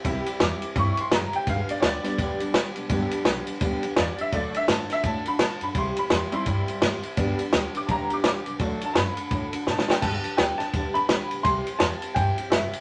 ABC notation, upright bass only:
X:1
M:4/4
L:1/8
Q:"Swing" 1/4=168
K:G
V:1 name="Upright bass" clef=bass
C,, z E,, z G,, z F,,, z | G,,, z D,, z D,, z D,, B,,, | G,,, z B,,, z D,, z E,, z | D,, z A,, z A,, z A,, F,, |
C,, z E,, z G,, z A,, z | G,,, z D,, z D,, z D,, B,,, | D,, z F,, z A,, z B,, z | G,,, z D,, z D,, z D,, B,,, |
C,, z E,, z G,, z F,,, z |]